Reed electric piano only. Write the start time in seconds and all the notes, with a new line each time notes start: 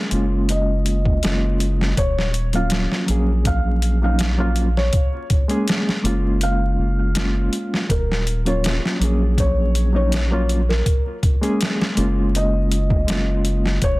0.10 G#3 A#3 C#4
0.14 F4
1.23 G#3 A#3 C#4 F4
2.54 F#3 A#3 C#4 F4
3.06 F#3 A#3 C#4
3.11 G#4
4.02 F#3 A#3 C#4 D#4
4.37 F#3 A#3 C#4 F4
5.48 G#3 A#3 C#4 G#4
6.02 G#3 A#3 C#4
6.07 F4
7.15 G#3 A#3 C#4 F4
8.45 F#3 A#3 C#4 F4
8.99 F#3 A#3 C#4
9.04 G#4
9.93 F#3 A#3 C#4 D#4
10.31 F#3 A#3 C#4 F4
11.41 G#3 A#3 C#4 G#4
11.95 G#3 A#3 C#4
11.99 F4
13.07 G#3 A#3 C#4 F4